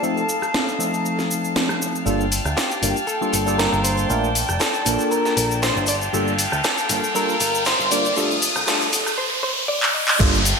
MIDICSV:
0, 0, Header, 1, 8, 480
1, 0, Start_track
1, 0, Key_signature, -2, "minor"
1, 0, Tempo, 508475
1, 29, Time_signature, 4, 2, 24, 8
1, 10002, End_track
2, 0, Start_track
2, 0, Title_t, "String section"
2, 0, Program_c, 0, 48
2, 0, Note_on_c, 0, 77, 84
2, 0, Note_on_c, 0, 81, 66
2, 25, Note_on_c, 0, 63, 73
2, 1912, Note_off_c, 0, 77, 0
2, 1913, Note_off_c, 0, 81, 0
2, 1928, Note_off_c, 0, 63, 0
2, 1952, Note_on_c, 0, 77, 67
2, 1952, Note_on_c, 0, 79, 82
2, 1953, Note_on_c, 0, 81, 73
2, 3851, Note_off_c, 0, 77, 0
2, 3865, Note_on_c, 0, 74, 71
2, 5515, Note_off_c, 0, 79, 0
2, 5530, Note_off_c, 0, 74, 0
2, 5549, Note_on_c, 0, 77, 76
2, 5550, Note_on_c, 0, 79, 92
2, 7688, Note_off_c, 0, 79, 0
2, 7710, Note_on_c, 0, 87, 85
2, 8633, Note_off_c, 0, 81, 0
2, 8638, Note_off_c, 0, 77, 0
2, 8660, Note_off_c, 0, 87, 0
2, 9628, Note_on_c, 0, 77, 73
2, 9629, Note_on_c, 0, 79, 90
2, 9630, Note_on_c, 0, 81, 81
2, 10002, Note_off_c, 0, 77, 0
2, 10002, Note_off_c, 0, 79, 0
2, 10002, Note_off_c, 0, 81, 0
2, 10002, End_track
3, 0, Start_track
3, 0, Title_t, "Clean electric guitar"
3, 0, Program_c, 1, 27
3, 0, Note_on_c, 1, 69, 90
3, 1433, Note_off_c, 1, 69, 0
3, 2424, Note_on_c, 1, 67, 80
3, 2896, Note_off_c, 1, 67, 0
3, 2899, Note_on_c, 1, 69, 92
3, 3127, Note_off_c, 1, 69, 0
3, 3138, Note_on_c, 1, 69, 89
3, 3378, Note_off_c, 1, 69, 0
3, 3382, Note_on_c, 1, 70, 94
3, 3620, Note_off_c, 1, 70, 0
3, 3624, Note_on_c, 1, 72, 90
3, 3849, Note_off_c, 1, 72, 0
3, 4345, Note_on_c, 1, 69, 82
3, 4824, Note_off_c, 1, 69, 0
3, 4828, Note_on_c, 1, 70, 92
3, 5055, Note_off_c, 1, 70, 0
3, 5067, Note_on_c, 1, 70, 90
3, 5291, Note_off_c, 1, 70, 0
3, 5309, Note_on_c, 1, 72, 100
3, 5549, Note_off_c, 1, 72, 0
3, 5553, Note_on_c, 1, 74, 93
3, 5617, Note_off_c, 1, 74, 0
3, 6275, Note_on_c, 1, 69, 85
3, 6754, Note_off_c, 1, 69, 0
3, 6757, Note_on_c, 1, 70, 92
3, 6983, Note_off_c, 1, 70, 0
3, 6994, Note_on_c, 1, 70, 90
3, 7228, Note_off_c, 1, 70, 0
3, 7232, Note_on_c, 1, 72, 101
3, 7470, Note_off_c, 1, 72, 0
3, 7473, Note_on_c, 1, 74, 99
3, 7695, Note_off_c, 1, 74, 0
3, 8190, Note_on_c, 1, 69, 86
3, 8663, Note_on_c, 1, 72, 102
3, 8684, Note_off_c, 1, 69, 0
3, 8729, Note_off_c, 1, 72, 0
3, 8902, Note_on_c, 1, 72, 100
3, 8968, Note_off_c, 1, 72, 0
3, 9140, Note_on_c, 1, 74, 107
3, 9384, Note_off_c, 1, 74, 0
3, 9388, Note_on_c, 1, 75, 99
3, 9612, Note_off_c, 1, 75, 0
3, 10002, End_track
4, 0, Start_track
4, 0, Title_t, "Tine electric piano"
4, 0, Program_c, 2, 4
4, 22, Note_on_c, 2, 53, 88
4, 25, Note_on_c, 2, 57, 81
4, 27, Note_on_c, 2, 60, 83
4, 29, Note_on_c, 2, 63, 82
4, 32, Note_on_c, 2, 69, 97
4, 199, Note_off_c, 2, 53, 0
4, 200, Note_off_c, 2, 57, 0
4, 201, Note_off_c, 2, 60, 0
4, 202, Note_off_c, 2, 63, 0
4, 204, Note_off_c, 2, 69, 0
4, 738, Note_on_c, 2, 53, 70
4, 742, Note_on_c, 2, 57, 65
4, 747, Note_on_c, 2, 60, 64
4, 752, Note_on_c, 2, 63, 65
4, 756, Note_on_c, 2, 69, 74
4, 1917, Note_off_c, 2, 53, 0
4, 1919, Note_off_c, 2, 57, 0
4, 1921, Note_off_c, 2, 60, 0
4, 1924, Note_off_c, 2, 63, 0
4, 1926, Note_off_c, 2, 69, 0
4, 1940, Note_on_c, 2, 55, 88
4, 1942, Note_on_c, 2, 58, 78
4, 1945, Note_on_c, 2, 62, 78
4, 1947, Note_on_c, 2, 65, 81
4, 1948, Note_on_c, 2, 69, 94
4, 2118, Note_off_c, 2, 55, 0
4, 2119, Note_off_c, 2, 58, 0
4, 2120, Note_off_c, 2, 62, 0
4, 2121, Note_off_c, 2, 65, 0
4, 2122, Note_off_c, 2, 69, 0
4, 2664, Note_on_c, 2, 55, 69
4, 2668, Note_on_c, 2, 58, 65
4, 2669, Note_on_c, 2, 62, 65
4, 2671, Note_on_c, 2, 65, 62
4, 2675, Note_on_c, 2, 70, 77
4, 2779, Note_off_c, 2, 55, 0
4, 2781, Note_off_c, 2, 58, 0
4, 2781, Note_off_c, 2, 62, 0
4, 2782, Note_off_c, 2, 65, 0
4, 2785, Note_off_c, 2, 70, 0
4, 3030, Note_on_c, 2, 55, 79
4, 3031, Note_on_c, 2, 58, 71
4, 3036, Note_on_c, 2, 62, 73
4, 3037, Note_on_c, 2, 65, 73
4, 3038, Note_on_c, 2, 69, 85
4, 3243, Note_off_c, 2, 55, 0
4, 3243, Note_off_c, 2, 58, 0
4, 3246, Note_off_c, 2, 62, 0
4, 3246, Note_off_c, 2, 65, 0
4, 3247, Note_off_c, 2, 69, 0
4, 3263, Note_on_c, 2, 55, 76
4, 3268, Note_on_c, 2, 58, 70
4, 3272, Note_on_c, 2, 62, 69
4, 3277, Note_on_c, 2, 65, 70
4, 3282, Note_on_c, 2, 69, 84
4, 3835, Note_off_c, 2, 55, 0
4, 3837, Note_off_c, 2, 58, 0
4, 3839, Note_off_c, 2, 62, 0
4, 3842, Note_off_c, 2, 65, 0
4, 3845, Note_off_c, 2, 69, 0
4, 3862, Note_on_c, 2, 57, 90
4, 3865, Note_on_c, 2, 58, 82
4, 3869, Note_on_c, 2, 62, 82
4, 3869, Note_on_c, 2, 65, 84
4, 3872, Note_on_c, 2, 70, 101
4, 4039, Note_off_c, 2, 57, 0
4, 4040, Note_off_c, 2, 58, 0
4, 4042, Note_off_c, 2, 62, 0
4, 4042, Note_off_c, 2, 65, 0
4, 4044, Note_off_c, 2, 70, 0
4, 4579, Note_on_c, 2, 69, 71
4, 4584, Note_on_c, 2, 58, 66
4, 4588, Note_on_c, 2, 62, 65
4, 4594, Note_on_c, 2, 65, 65
4, 4598, Note_on_c, 2, 70, 80
4, 5531, Note_off_c, 2, 69, 0
4, 5533, Note_off_c, 2, 58, 0
4, 5535, Note_off_c, 2, 62, 0
4, 5538, Note_off_c, 2, 65, 0
4, 5540, Note_off_c, 2, 70, 0
4, 5785, Note_on_c, 2, 55, 82
4, 5788, Note_on_c, 2, 58, 78
4, 5789, Note_on_c, 2, 62, 79
4, 5793, Note_on_c, 2, 65, 76
4, 5794, Note_on_c, 2, 69, 91
4, 5960, Note_off_c, 2, 55, 0
4, 5962, Note_off_c, 2, 58, 0
4, 5962, Note_off_c, 2, 62, 0
4, 5964, Note_off_c, 2, 65, 0
4, 5965, Note_off_c, 2, 69, 0
4, 6509, Note_on_c, 2, 55, 68
4, 6512, Note_on_c, 2, 58, 62
4, 6514, Note_on_c, 2, 62, 63
4, 6516, Note_on_c, 2, 65, 65
4, 6518, Note_on_c, 2, 70, 77
4, 6621, Note_off_c, 2, 55, 0
4, 6623, Note_off_c, 2, 58, 0
4, 6624, Note_off_c, 2, 62, 0
4, 6625, Note_off_c, 2, 65, 0
4, 6626, Note_off_c, 2, 70, 0
4, 6745, Note_on_c, 2, 55, 89
4, 6749, Note_on_c, 2, 58, 80
4, 6750, Note_on_c, 2, 62, 83
4, 6752, Note_on_c, 2, 65, 83
4, 6756, Note_on_c, 2, 69, 101
4, 6920, Note_off_c, 2, 55, 0
4, 6922, Note_off_c, 2, 58, 0
4, 6923, Note_off_c, 2, 62, 0
4, 6924, Note_off_c, 2, 65, 0
4, 6925, Note_off_c, 2, 69, 0
4, 7467, Note_on_c, 2, 55, 75
4, 7470, Note_on_c, 2, 58, 69
4, 7472, Note_on_c, 2, 62, 67
4, 7474, Note_on_c, 2, 65, 67
4, 7476, Note_on_c, 2, 70, 82
4, 7581, Note_off_c, 2, 55, 0
4, 7582, Note_off_c, 2, 58, 0
4, 7583, Note_off_c, 2, 62, 0
4, 7584, Note_off_c, 2, 65, 0
4, 7585, Note_off_c, 2, 70, 0
4, 7706, Note_on_c, 2, 55, 94
4, 7710, Note_on_c, 2, 57, 83
4, 7712, Note_on_c, 2, 62, 85
4, 7713, Note_on_c, 2, 65, 85
4, 7716, Note_on_c, 2, 69, 100
4, 7881, Note_off_c, 2, 55, 0
4, 7883, Note_off_c, 2, 57, 0
4, 7884, Note_off_c, 2, 62, 0
4, 7884, Note_off_c, 2, 65, 0
4, 7886, Note_off_c, 2, 69, 0
4, 8187, Note_on_c, 2, 55, 91
4, 8190, Note_on_c, 2, 57, 83
4, 8191, Note_on_c, 2, 62, 86
4, 8192, Note_on_c, 2, 65, 86
4, 8197, Note_on_c, 2, 69, 102
4, 8361, Note_off_c, 2, 55, 0
4, 8363, Note_off_c, 2, 57, 0
4, 8363, Note_off_c, 2, 62, 0
4, 8364, Note_off_c, 2, 65, 0
4, 8366, Note_off_c, 2, 69, 0
4, 9624, Note_on_c, 2, 55, 92
4, 9626, Note_on_c, 2, 58, 84
4, 9629, Note_on_c, 2, 62, 85
4, 9630, Note_on_c, 2, 65, 85
4, 9634, Note_on_c, 2, 69, 105
4, 9800, Note_off_c, 2, 55, 0
4, 9801, Note_off_c, 2, 58, 0
4, 9802, Note_off_c, 2, 62, 0
4, 9803, Note_off_c, 2, 65, 0
4, 9805, Note_off_c, 2, 69, 0
4, 10002, End_track
5, 0, Start_track
5, 0, Title_t, "Picked electric bass"
5, 0, Program_c, 3, 34
5, 1947, Note_on_c, 3, 31, 91
5, 2253, Note_off_c, 3, 31, 0
5, 2313, Note_on_c, 3, 38, 81
5, 2392, Note_off_c, 3, 38, 0
5, 2666, Note_on_c, 3, 31, 83
5, 2756, Note_off_c, 3, 31, 0
5, 3146, Note_on_c, 3, 31, 81
5, 3452, Note_off_c, 3, 31, 0
5, 3513, Note_on_c, 3, 31, 93
5, 3812, Note_off_c, 3, 31, 0
5, 3866, Note_on_c, 3, 34, 94
5, 4172, Note_off_c, 3, 34, 0
5, 4235, Note_on_c, 3, 29, 84
5, 4313, Note_off_c, 3, 29, 0
5, 4586, Note_on_c, 3, 34, 84
5, 4676, Note_off_c, 3, 34, 0
5, 5066, Note_on_c, 3, 34, 83
5, 5372, Note_off_c, 3, 34, 0
5, 5434, Note_on_c, 3, 31, 96
5, 5732, Note_off_c, 3, 31, 0
5, 5785, Note_on_c, 3, 31, 94
5, 6092, Note_off_c, 3, 31, 0
5, 6154, Note_on_c, 3, 38, 86
5, 6233, Note_off_c, 3, 38, 0
5, 6508, Note_on_c, 3, 31, 89
5, 6597, Note_off_c, 3, 31, 0
5, 6986, Note_on_c, 3, 31, 88
5, 7292, Note_off_c, 3, 31, 0
5, 7353, Note_on_c, 3, 31, 97
5, 7652, Note_off_c, 3, 31, 0
5, 7706, Note_on_c, 3, 29, 98
5, 8012, Note_off_c, 3, 29, 0
5, 8073, Note_on_c, 3, 36, 89
5, 8152, Note_off_c, 3, 36, 0
5, 8423, Note_on_c, 3, 29, 91
5, 8515, Note_off_c, 3, 29, 0
5, 9629, Note_on_c, 3, 31, 96
5, 9934, Note_off_c, 3, 31, 0
5, 10002, End_track
6, 0, Start_track
6, 0, Title_t, "Downlifter"
6, 0, Program_c, 4, 103
6, 9626, Note_on_c, 4, 60, 77
6, 10002, Note_off_c, 4, 60, 0
6, 10002, End_track
7, 0, Start_track
7, 0, Title_t, "Riser"
7, 0, Program_c, 5, 103
7, 1945, Note_on_c, 5, 60, 74
7, 9627, Note_off_c, 5, 60, 0
7, 10002, End_track
8, 0, Start_track
8, 0, Title_t, "Drums"
8, 35, Note_on_c, 9, 82, 43
8, 129, Note_off_c, 9, 82, 0
8, 164, Note_on_c, 9, 82, 22
8, 258, Note_off_c, 9, 82, 0
8, 276, Note_on_c, 9, 82, 79
8, 370, Note_off_c, 9, 82, 0
8, 399, Note_on_c, 9, 37, 59
8, 406, Note_on_c, 9, 82, 32
8, 494, Note_off_c, 9, 37, 0
8, 500, Note_off_c, 9, 82, 0
8, 514, Note_on_c, 9, 38, 109
8, 517, Note_on_c, 9, 82, 43
8, 608, Note_off_c, 9, 38, 0
8, 612, Note_off_c, 9, 82, 0
8, 647, Note_on_c, 9, 82, 21
8, 741, Note_off_c, 9, 82, 0
8, 758, Note_on_c, 9, 82, 76
8, 852, Note_off_c, 9, 82, 0
8, 886, Note_on_c, 9, 82, 31
8, 980, Note_off_c, 9, 82, 0
8, 996, Note_on_c, 9, 82, 43
8, 1091, Note_off_c, 9, 82, 0
8, 1121, Note_on_c, 9, 38, 33
8, 1124, Note_on_c, 9, 82, 20
8, 1215, Note_off_c, 9, 38, 0
8, 1219, Note_off_c, 9, 82, 0
8, 1236, Note_on_c, 9, 82, 76
8, 1330, Note_off_c, 9, 82, 0
8, 1364, Note_on_c, 9, 82, 32
8, 1458, Note_off_c, 9, 82, 0
8, 1473, Note_on_c, 9, 38, 113
8, 1476, Note_on_c, 9, 82, 43
8, 1567, Note_off_c, 9, 38, 0
8, 1571, Note_off_c, 9, 82, 0
8, 1598, Note_on_c, 9, 37, 76
8, 1604, Note_on_c, 9, 82, 22
8, 1692, Note_off_c, 9, 37, 0
8, 1699, Note_off_c, 9, 82, 0
8, 1717, Note_on_c, 9, 82, 73
8, 1812, Note_off_c, 9, 82, 0
8, 1844, Note_on_c, 9, 82, 31
8, 1938, Note_off_c, 9, 82, 0
8, 1947, Note_on_c, 9, 82, 52
8, 1955, Note_off_c, 9, 82, 0
8, 1955, Note_on_c, 9, 82, 43
8, 2049, Note_off_c, 9, 82, 0
8, 2082, Note_on_c, 9, 82, 22
8, 2176, Note_off_c, 9, 82, 0
8, 2188, Note_on_c, 9, 46, 100
8, 2190, Note_on_c, 9, 82, 81
8, 2195, Note_off_c, 9, 82, 0
8, 2195, Note_on_c, 9, 82, 77
8, 2283, Note_off_c, 9, 46, 0
8, 2289, Note_off_c, 9, 82, 0
8, 2315, Note_on_c, 9, 82, 36
8, 2317, Note_on_c, 9, 37, 58
8, 2324, Note_off_c, 9, 82, 0
8, 2324, Note_on_c, 9, 82, 33
8, 2412, Note_off_c, 9, 37, 0
8, 2418, Note_off_c, 9, 82, 0
8, 2426, Note_on_c, 9, 82, 46
8, 2431, Note_on_c, 9, 38, 116
8, 2434, Note_off_c, 9, 82, 0
8, 2434, Note_on_c, 9, 82, 43
8, 2525, Note_off_c, 9, 38, 0
8, 2528, Note_off_c, 9, 82, 0
8, 2558, Note_on_c, 9, 82, 37
8, 2562, Note_off_c, 9, 82, 0
8, 2562, Note_on_c, 9, 82, 22
8, 2657, Note_off_c, 9, 82, 0
8, 2668, Note_on_c, 9, 46, 100
8, 2670, Note_on_c, 9, 82, 84
8, 2675, Note_off_c, 9, 82, 0
8, 2675, Note_on_c, 9, 82, 77
8, 2763, Note_off_c, 9, 46, 0
8, 2769, Note_off_c, 9, 82, 0
8, 2797, Note_on_c, 9, 82, 39
8, 2803, Note_off_c, 9, 82, 0
8, 2803, Note_on_c, 9, 82, 33
8, 2897, Note_off_c, 9, 82, 0
8, 2899, Note_on_c, 9, 82, 45
8, 2915, Note_off_c, 9, 82, 0
8, 2915, Note_on_c, 9, 82, 43
8, 3009, Note_off_c, 9, 82, 0
8, 3042, Note_on_c, 9, 82, 21
8, 3137, Note_off_c, 9, 82, 0
8, 3144, Note_on_c, 9, 82, 94
8, 3148, Note_on_c, 9, 46, 103
8, 3155, Note_off_c, 9, 82, 0
8, 3155, Note_on_c, 9, 82, 80
8, 3243, Note_off_c, 9, 46, 0
8, 3249, Note_off_c, 9, 82, 0
8, 3270, Note_on_c, 9, 82, 34
8, 3282, Note_off_c, 9, 82, 0
8, 3282, Note_on_c, 9, 82, 33
8, 3377, Note_off_c, 9, 82, 0
8, 3390, Note_on_c, 9, 82, 53
8, 3393, Note_on_c, 9, 38, 117
8, 3396, Note_off_c, 9, 82, 0
8, 3396, Note_on_c, 9, 82, 44
8, 3487, Note_off_c, 9, 38, 0
8, 3490, Note_off_c, 9, 82, 0
8, 3525, Note_on_c, 9, 82, 23
8, 3619, Note_off_c, 9, 82, 0
8, 3628, Note_on_c, 9, 82, 90
8, 3630, Note_on_c, 9, 46, 99
8, 3636, Note_off_c, 9, 82, 0
8, 3636, Note_on_c, 9, 82, 76
8, 3724, Note_off_c, 9, 46, 0
8, 3730, Note_off_c, 9, 82, 0
8, 3749, Note_on_c, 9, 82, 37
8, 3764, Note_off_c, 9, 82, 0
8, 3764, Note_on_c, 9, 82, 32
8, 3858, Note_off_c, 9, 82, 0
8, 3868, Note_on_c, 9, 82, 52
8, 3877, Note_off_c, 9, 82, 0
8, 3877, Note_on_c, 9, 82, 43
8, 3971, Note_off_c, 9, 82, 0
8, 4005, Note_on_c, 9, 82, 22
8, 4099, Note_off_c, 9, 82, 0
8, 4110, Note_on_c, 9, 46, 105
8, 4111, Note_on_c, 9, 82, 93
8, 4116, Note_off_c, 9, 82, 0
8, 4116, Note_on_c, 9, 82, 77
8, 4204, Note_off_c, 9, 46, 0
8, 4210, Note_off_c, 9, 82, 0
8, 4231, Note_on_c, 9, 82, 39
8, 4236, Note_on_c, 9, 37, 61
8, 4243, Note_off_c, 9, 82, 0
8, 4243, Note_on_c, 9, 82, 33
8, 4331, Note_off_c, 9, 37, 0
8, 4337, Note_off_c, 9, 82, 0
8, 4339, Note_on_c, 9, 82, 48
8, 4351, Note_on_c, 9, 38, 120
8, 4354, Note_off_c, 9, 82, 0
8, 4354, Note_on_c, 9, 82, 44
8, 4445, Note_off_c, 9, 38, 0
8, 4448, Note_off_c, 9, 82, 0
8, 4472, Note_on_c, 9, 82, 34
8, 4483, Note_off_c, 9, 82, 0
8, 4483, Note_on_c, 9, 82, 22
8, 4578, Note_off_c, 9, 82, 0
8, 4585, Note_on_c, 9, 82, 88
8, 4588, Note_on_c, 9, 46, 109
8, 4595, Note_off_c, 9, 82, 0
8, 4595, Note_on_c, 9, 82, 78
8, 4683, Note_off_c, 9, 46, 0
8, 4689, Note_off_c, 9, 82, 0
8, 4708, Note_on_c, 9, 82, 36
8, 4723, Note_off_c, 9, 82, 0
8, 4723, Note_on_c, 9, 82, 33
8, 4818, Note_off_c, 9, 82, 0
8, 4827, Note_on_c, 9, 82, 46
8, 4835, Note_off_c, 9, 82, 0
8, 4835, Note_on_c, 9, 82, 42
8, 4929, Note_off_c, 9, 82, 0
8, 4960, Note_on_c, 9, 38, 36
8, 4964, Note_on_c, 9, 82, 22
8, 5055, Note_off_c, 9, 38, 0
8, 5058, Note_off_c, 9, 82, 0
8, 5069, Note_on_c, 9, 46, 107
8, 5072, Note_on_c, 9, 82, 97
8, 5075, Note_off_c, 9, 82, 0
8, 5075, Note_on_c, 9, 82, 78
8, 5163, Note_off_c, 9, 46, 0
8, 5170, Note_off_c, 9, 82, 0
8, 5200, Note_on_c, 9, 82, 39
8, 5204, Note_off_c, 9, 82, 0
8, 5204, Note_on_c, 9, 82, 32
8, 5299, Note_off_c, 9, 82, 0
8, 5308, Note_on_c, 9, 82, 47
8, 5313, Note_on_c, 9, 38, 120
8, 5317, Note_off_c, 9, 82, 0
8, 5317, Note_on_c, 9, 82, 45
8, 5408, Note_off_c, 9, 38, 0
8, 5411, Note_off_c, 9, 82, 0
8, 5445, Note_on_c, 9, 82, 22
8, 5537, Note_off_c, 9, 82, 0
8, 5537, Note_on_c, 9, 82, 89
8, 5550, Note_on_c, 9, 46, 102
8, 5556, Note_off_c, 9, 82, 0
8, 5556, Note_on_c, 9, 82, 76
8, 5644, Note_off_c, 9, 46, 0
8, 5651, Note_off_c, 9, 82, 0
8, 5674, Note_on_c, 9, 82, 39
8, 5685, Note_off_c, 9, 82, 0
8, 5685, Note_on_c, 9, 82, 32
8, 5779, Note_off_c, 9, 82, 0
8, 5795, Note_on_c, 9, 82, 52
8, 5797, Note_off_c, 9, 82, 0
8, 5797, Note_on_c, 9, 82, 42
8, 5891, Note_off_c, 9, 82, 0
8, 5925, Note_on_c, 9, 82, 21
8, 6019, Note_off_c, 9, 82, 0
8, 6028, Note_on_c, 9, 46, 108
8, 6030, Note_on_c, 9, 82, 99
8, 6035, Note_off_c, 9, 82, 0
8, 6035, Note_on_c, 9, 82, 77
8, 6123, Note_off_c, 9, 46, 0
8, 6129, Note_off_c, 9, 82, 0
8, 6157, Note_on_c, 9, 37, 63
8, 6161, Note_on_c, 9, 82, 38
8, 6163, Note_off_c, 9, 82, 0
8, 6163, Note_on_c, 9, 82, 32
8, 6251, Note_off_c, 9, 37, 0
8, 6258, Note_off_c, 9, 82, 0
8, 6265, Note_on_c, 9, 82, 57
8, 6272, Note_on_c, 9, 38, 119
8, 6276, Note_off_c, 9, 82, 0
8, 6276, Note_on_c, 9, 82, 43
8, 6367, Note_off_c, 9, 38, 0
8, 6370, Note_off_c, 9, 82, 0
8, 6396, Note_on_c, 9, 82, 40
8, 6402, Note_off_c, 9, 82, 0
8, 6402, Note_on_c, 9, 82, 22
8, 6496, Note_off_c, 9, 82, 0
8, 6507, Note_on_c, 9, 46, 110
8, 6507, Note_on_c, 9, 82, 97
8, 6514, Note_off_c, 9, 82, 0
8, 6514, Note_on_c, 9, 82, 77
8, 6602, Note_off_c, 9, 46, 0
8, 6608, Note_off_c, 9, 82, 0
8, 6643, Note_on_c, 9, 82, 32
8, 6648, Note_off_c, 9, 82, 0
8, 6648, Note_on_c, 9, 82, 43
8, 6743, Note_off_c, 9, 82, 0
8, 6752, Note_on_c, 9, 82, 57
8, 6756, Note_off_c, 9, 82, 0
8, 6756, Note_on_c, 9, 82, 43
8, 6851, Note_off_c, 9, 82, 0
8, 6883, Note_on_c, 9, 82, 21
8, 6978, Note_off_c, 9, 82, 0
8, 6986, Note_on_c, 9, 82, 93
8, 6990, Note_on_c, 9, 46, 114
8, 6996, Note_off_c, 9, 82, 0
8, 6996, Note_on_c, 9, 82, 75
8, 7084, Note_off_c, 9, 46, 0
8, 7091, Note_off_c, 9, 82, 0
8, 7124, Note_on_c, 9, 82, 43
8, 7219, Note_off_c, 9, 82, 0
8, 7221, Note_on_c, 9, 82, 56
8, 7233, Note_on_c, 9, 38, 120
8, 7237, Note_off_c, 9, 82, 0
8, 7237, Note_on_c, 9, 82, 43
8, 7328, Note_off_c, 9, 38, 0
8, 7331, Note_off_c, 9, 82, 0
8, 7366, Note_on_c, 9, 82, 22
8, 7460, Note_off_c, 9, 82, 0
8, 7470, Note_on_c, 9, 82, 89
8, 7471, Note_on_c, 9, 46, 104
8, 7477, Note_off_c, 9, 82, 0
8, 7477, Note_on_c, 9, 82, 76
8, 7565, Note_off_c, 9, 46, 0
8, 7572, Note_off_c, 9, 82, 0
8, 7594, Note_on_c, 9, 82, 42
8, 7606, Note_off_c, 9, 82, 0
8, 7606, Note_on_c, 9, 82, 33
8, 7701, Note_off_c, 9, 82, 0
8, 7702, Note_on_c, 9, 82, 55
8, 7718, Note_off_c, 9, 82, 0
8, 7718, Note_on_c, 9, 82, 43
8, 7812, Note_off_c, 9, 82, 0
8, 7847, Note_on_c, 9, 82, 22
8, 7941, Note_off_c, 9, 82, 0
8, 7948, Note_on_c, 9, 82, 91
8, 7950, Note_on_c, 9, 46, 112
8, 7956, Note_off_c, 9, 82, 0
8, 7956, Note_on_c, 9, 82, 75
8, 8044, Note_off_c, 9, 46, 0
8, 8051, Note_off_c, 9, 82, 0
8, 8078, Note_on_c, 9, 37, 69
8, 8079, Note_on_c, 9, 82, 43
8, 8085, Note_off_c, 9, 82, 0
8, 8085, Note_on_c, 9, 82, 33
8, 8173, Note_off_c, 9, 37, 0
8, 8179, Note_off_c, 9, 82, 0
8, 8186, Note_on_c, 9, 82, 52
8, 8194, Note_on_c, 9, 38, 117
8, 8197, Note_off_c, 9, 82, 0
8, 8197, Note_on_c, 9, 82, 43
8, 8288, Note_off_c, 9, 38, 0
8, 8292, Note_off_c, 9, 82, 0
8, 8314, Note_on_c, 9, 82, 41
8, 8324, Note_off_c, 9, 82, 0
8, 8324, Note_on_c, 9, 82, 22
8, 8419, Note_off_c, 9, 82, 0
8, 8425, Note_on_c, 9, 82, 92
8, 8429, Note_on_c, 9, 46, 115
8, 8436, Note_off_c, 9, 82, 0
8, 8436, Note_on_c, 9, 82, 75
8, 8524, Note_off_c, 9, 46, 0
8, 8530, Note_off_c, 9, 82, 0
8, 8557, Note_on_c, 9, 37, 62
8, 8561, Note_on_c, 9, 82, 42
8, 8563, Note_off_c, 9, 82, 0
8, 8563, Note_on_c, 9, 82, 32
8, 8651, Note_off_c, 9, 37, 0
8, 8658, Note_off_c, 9, 82, 0
8, 9276, Note_on_c, 9, 39, 75
8, 9370, Note_off_c, 9, 39, 0
8, 9516, Note_on_c, 9, 39, 99
8, 9610, Note_off_c, 9, 39, 0
8, 9623, Note_on_c, 9, 82, 50
8, 9629, Note_on_c, 9, 36, 121
8, 9629, Note_on_c, 9, 49, 106
8, 9635, Note_off_c, 9, 82, 0
8, 9635, Note_on_c, 9, 82, 46
8, 9723, Note_off_c, 9, 36, 0
8, 9723, Note_off_c, 9, 49, 0
8, 9729, Note_off_c, 9, 82, 0
8, 9764, Note_on_c, 9, 82, 24
8, 9858, Note_off_c, 9, 82, 0
8, 9868, Note_on_c, 9, 46, 110
8, 9873, Note_on_c, 9, 82, 93
8, 9874, Note_off_c, 9, 82, 0
8, 9874, Note_on_c, 9, 82, 83
8, 9962, Note_off_c, 9, 46, 0
8, 9969, Note_off_c, 9, 82, 0
8, 10002, End_track
0, 0, End_of_file